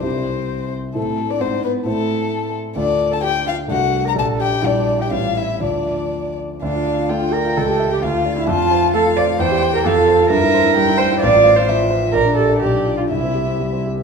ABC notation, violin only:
X:1
M:2/4
L:1/16
Q:1/4=129
K:Am
V:1 name="Violin"
c6 z2 | A3 d c2 B2 | A6 z2 | [K:Dm] d3 a g2 f2 |
^f3 b a2 g2 | d3 g f2 e2 | d6 z2 | f4 g4- |
g4 f4 | a4 f4 | g4 f4 | [K:Cmix] e4 g4 |
f4 e4 | d4 d4 | e6 z2 |]